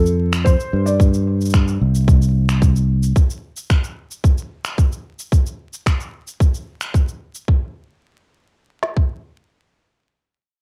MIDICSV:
0, 0, Header, 1, 4, 480
1, 0, Start_track
1, 0, Key_signature, -1, "major"
1, 0, Tempo, 540541
1, 884, Time_signature, 4, 2, 24, 8
1, 9423, End_track
2, 0, Start_track
2, 0, Title_t, "Felt piano"
2, 0, Program_c, 0, 0
2, 0, Note_on_c, 0, 69, 86
2, 396, Note_on_c, 0, 72, 90
2, 416, Note_off_c, 0, 69, 0
2, 763, Note_on_c, 0, 74, 76
2, 771, Note_off_c, 0, 72, 0
2, 875, Note_off_c, 0, 74, 0
2, 9423, End_track
3, 0, Start_track
3, 0, Title_t, "Fingered electric bass"
3, 0, Program_c, 1, 33
3, 0, Note_on_c, 1, 41, 89
3, 487, Note_off_c, 1, 41, 0
3, 649, Note_on_c, 1, 43, 75
3, 1569, Note_off_c, 1, 43, 0
3, 1610, Note_on_c, 1, 36, 80
3, 2770, Note_off_c, 1, 36, 0
3, 9423, End_track
4, 0, Start_track
4, 0, Title_t, "Drums"
4, 54, Note_on_c, 9, 82, 31
4, 143, Note_off_c, 9, 82, 0
4, 291, Note_on_c, 9, 26, 81
4, 294, Note_on_c, 9, 82, 58
4, 380, Note_off_c, 9, 26, 0
4, 383, Note_off_c, 9, 82, 0
4, 406, Note_on_c, 9, 36, 101
4, 415, Note_on_c, 9, 82, 52
4, 495, Note_off_c, 9, 36, 0
4, 504, Note_off_c, 9, 82, 0
4, 534, Note_on_c, 9, 82, 31
4, 622, Note_off_c, 9, 82, 0
4, 771, Note_on_c, 9, 82, 62
4, 860, Note_off_c, 9, 82, 0
4, 886, Note_on_c, 9, 36, 91
4, 894, Note_on_c, 9, 82, 50
4, 974, Note_off_c, 9, 36, 0
4, 983, Note_off_c, 9, 82, 0
4, 1011, Note_on_c, 9, 82, 34
4, 1100, Note_off_c, 9, 82, 0
4, 1253, Note_on_c, 9, 82, 28
4, 1292, Note_off_c, 9, 82, 0
4, 1292, Note_on_c, 9, 82, 38
4, 1330, Note_off_c, 9, 82, 0
4, 1330, Note_on_c, 9, 82, 50
4, 1366, Note_on_c, 9, 26, 76
4, 1366, Note_on_c, 9, 36, 99
4, 1369, Note_off_c, 9, 82, 0
4, 1369, Note_on_c, 9, 82, 53
4, 1455, Note_off_c, 9, 26, 0
4, 1455, Note_off_c, 9, 36, 0
4, 1458, Note_off_c, 9, 82, 0
4, 1491, Note_on_c, 9, 82, 27
4, 1580, Note_off_c, 9, 82, 0
4, 1733, Note_on_c, 9, 82, 59
4, 1822, Note_off_c, 9, 82, 0
4, 1846, Note_on_c, 9, 36, 105
4, 1853, Note_on_c, 9, 82, 54
4, 1935, Note_off_c, 9, 36, 0
4, 1942, Note_off_c, 9, 82, 0
4, 1972, Note_on_c, 9, 82, 32
4, 2061, Note_off_c, 9, 82, 0
4, 2211, Note_on_c, 9, 26, 73
4, 2213, Note_on_c, 9, 82, 65
4, 2300, Note_off_c, 9, 26, 0
4, 2302, Note_off_c, 9, 82, 0
4, 2325, Note_on_c, 9, 36, 100
4, 2332, Note_on_c, 9, 82, 54
4, 2414, Note_off_c, 9, 36, 0
4, 2421, Note_off_c, 9, 82, 0
4, 2452, Note_on_c, 9, 82, 32
4, 2541, Note_off_c, 9, 82, 0
4, 2692, Note_on_c, 9, 82, 59
4, 2780, Note_off_c, 9, 82, 0
4, 2805, Note_on_c, 9, 36, 97
4, 2809, Note_on_c, 9, 82, 51
4, 2894, Note_off_c, 9, 36, 0
4, 2898, Note_off_c, 9, 82, 0
4, 2933, Note_on_c, 9, 82, 32
4, 3021, Note_off_c, 9, 82, 0
4, 3169, Note_on_c, 9, 82, 64
4, 3258, Note_off_c, 9, 82, 0
4, 3286, Note_on_c, 9, 36, 94
4, 3287, Note_on_c, 9, 26, 70
4, 3290, Note_on_c, 9, 82, 51
4, 3374, Note_off_c, 9, 36, 0
4, 3376, Note_off_c, 9, 26, 0
4, 3378, Note_off_c, 9, 82, 0
4, 3411, Note_on_c, 9, 82, 28
4, 3500, Note_off_c, 9, 82, 0
4, 3652, Note_on_c, 9, 82, 55
4, 3741, Note_off_c, 9, 82, 0
4, 3764, Note_on_c, 9, 36, 98
4, 3770, Note_on_c, 9, 82, 54
4, 3853, Note_off_c, 9, 36, 0
4, 3859, Note_off_c, 9, 82, 0
4, 3889, Note_on_c, 9, 82, 28
4, 3978, Note_off_c, 9, 82, 0
4, 4127, Note_on_c, 9, 26, 68
4, 4129, Note_on_c, 9, 82, 58
4, 4216, Note_off_c, 9, 26, 0
4, 4218, Note_off_c, 9, 82, 0
4, 4245, Note_on_c, 9, 36, 93
4, 4249, Note_on_c, 9, 82, 49
4, 4334, Note_off_c, 9, 36, 0
4, 4337, Note_off_c, 9, 82, 0
4, 4372, Note_on_c, 9, 82, 31
4, 4461, Note_off_c, 9, 82, 0
4, 4613, Note_on_c, 9, 82, 60
4, 4701, Note_off_c, 9, 82, 0
4, 4725, Note_on_c, 9, 36, 95
4, 4732, Note_on_c, 9, 82, 52
4, 4814, Note_off_c, 9, 36, 0
4, 4821, Note_off_c, 9, 82, 0
4, 4853, Note_on_c, 9, 82, 30
4, 4942, Note_off_c, 9, 82, 0
4, 5093, Note_on_c, 9, 82, 62
4, 5182, Note_off_c, 9, 82, 0
4, 5206, Note_on_c, 9, 36, 91
4, 5211, Note_on_c, 9, 26, 72
4, 5213, Note_on_c, 9, 82, 49
4, 5294, Note_off_c, 9, 36, 0
4, 5299, Note_off_c, 9, 26, 0
4, 5302, Note_off_c, 9, 82, 0
4, 5331, Note_on_c, 9, 82, 25
4, 5420, Note_off_c, 9, 82, 0
4, 5573, Note_on_c, 9, 82, 54
4, 5662, Note_off_c, 9, 82, 0
4, 5686, Note_on_c, 9, 36, 99
4, 5693, Note_on_c, 9, 82, 51
4, 5774, Note_off_c, 9, 36, 0
4, 5782, Note_off_c, 9, 82, 0
4, 5811, Note_on_c, 9, 82, 28
4, 5900, Note_off_c, 9, 82, 0
4, 6047, Note_on_c, 9, 26, 67
4, 6050, Note_on_c, 9, 82, 61
4, 6136, Note_off_c, 9, 26, 0
4, 6139, Note_off_c, 9, 82, 0
4, 6164, Note_on_c, 9, 36, 94
4, 6170, Note_on_c, 9, 82, 52
4, 6253, Note_off_c, 9, 36, 0
4, 6259, Note_off_c, 9, 82, 0
4, 6290, Note_on_c, 9, 82, 27
4, 6379, Note_off_c, 9, 82, 0
4, 6527, Note_on_c, 9, 82, 52
4, 6616, Note_off_c, 9, 82, 0
4, 6644, Note_on_c, 9, 36, 88
4, 6732, Note_off_c, 9, 36, 0
4, 7838, Note_on_c, 9, 38, 57
4, 7927, Note_off_c, 9, 38, 0
4, 7961, Note_on_c, 9, 36, 64
4, 8050, Note_off_c, 9, 36, 0
4, 9423, End_track
0, 0, End_of_file